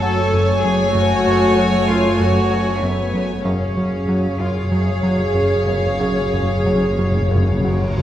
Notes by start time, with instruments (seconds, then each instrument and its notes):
Already playing: synth drone F#1, double bass section F#2, viola section A3, cello section A4, violin section C#5 G#5
0.02 analog synth bass F#3
0.33 analog synth bass F#2
0.63 analog synth bass F#2, cello section G#4
0.94 analog synth bass F#2, cello section F#4
1.27 analog synth bass F#2
1.59 analog synth bass F#3
1.89 analog synth bass F#2, cello section F4
2.20 analog synth bass F#2, cello section F#4
2.51 analog synth bass F#3
2.82 analog synth bass F#2, cello section B3
3.14 analog synth bass F#2
3.44 synth drone F#1, analog synth bass F#2, double bass section F#2, timpani F#2, cello section C#4, viola section G#4, violin section C#5 F5
3.53 timpani F#2
3.60 timpani F#2
3.68 timpani F#2
3.75 timpani F#2, analog synth bass F#2
3.98 timpani F#2
4.05 timpani F#2, analog synth bass F#3
4.12 timpani F#2
4.19 timpani F#2
4.27 timpani F#2
4.34 timpani F#2
4.39 analog synth bass F#2, cello section F4
4.49 timpani F#2
4.56 timpani F#2
4.64 timpani F#2
4.71 timpani F#2, analog synth bass F#2, cello section G#4
4.87 timpani F#2
4.94 timpani F#2
5.01 timpani F#2, analog synth bass F#3
5.09 timpani F#2
5.17 timpani F#2
5.25 timpani F#2
5.32 timpani F#2, analog synth bass F#2
5.40 timpani F#2
5.48 timpani F#2
5.55 timpani F#2
5.63 timpani F#2
5.67 analog synth bass F#2, timpani F#2, cello section B3
5.77 timpani F#2
5.86 timpani F#2
5.94 timpani F#2
5.99 analog synth bass F#2, timpani F#2, cello section C#4, reverse cymbal
6.11 timpani F#2
6.19 timpani F#2
6.26 timpani F#2
6.33 analog synth bass F#2, timpani F#2
6.40 timpani F#2
6.49 timpani F#2
6.57 timpani F#2
6.64 timpani F#2, analog synth bass F#3
6.73 timpani F#2
6.81 timpani F#2
6.88 timpani F#2
6.96 timpani F#2, analog synth bass F#2
7.04 timpani F#2
7.11 timpani F#2
7.20 timpani F#2
7.28 timpani F#2, analog synth bass F#2
7.35 timpani F#2
7.43 timpani F#2
7.50 timpani F#2
7.58 timpani F#2
7.64 timpani F#2, analog synth bass F#3
7.73 timpani F#2
7.81 timpani F#2
7.89 timpani F#2
7.96 analog synth bass F#2, timpani F#2